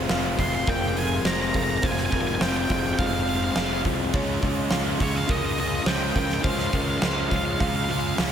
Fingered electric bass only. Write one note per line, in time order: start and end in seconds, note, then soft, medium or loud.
0.10 0.35 F1 loud
0.38 0.64 F1 medium
0.67 1.18 F1 medium
1.24 1.50 F1 medium
1.55 1.80 F1 medium
1.83 2.09 F1 loud
2.12 2.38 F1 loud
2.41 2.66 F1 loud
2.70 2.96 F1 medium
2.99 3.50 F1 medium
3.56 3.82 F1 medium
3.85 4.14 C2 loud
4.14 4.39 C#2 loud
4.43 4.68 C#2 loud
4.72 4.97 C#2 loud
5.00 5.26 C#2 loud
5.29 5.80 C#2 medium
5.86 6.12 C#2 loud
6.15 6.41 C#2 loud
6.44 6.70 C#2 loud
6.73 6.99 C#2 medium
7.02 7.28 C#2 medium
7.31 7.57 C#2 medium
7.61 8.12 C#2 medium
8.19 8.32 C#2 medium